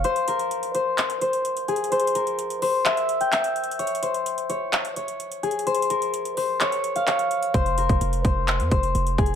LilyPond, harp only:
\new Staff \with { instrumentName = "Harp" } { \time 4/4 \key f \minor \tempo 4 = 128 c''8 bes'4 c''4 c''4 aes'8 | c''8 bes'4 c''8 e''8. g''16 e''4 | des''8 c''4 des''4 des''4 aes'8 | c''8 bes'4 c''8 des''8. f''16 des''4 |
c''8 bes'4 c''4 c''4 aes'8 | }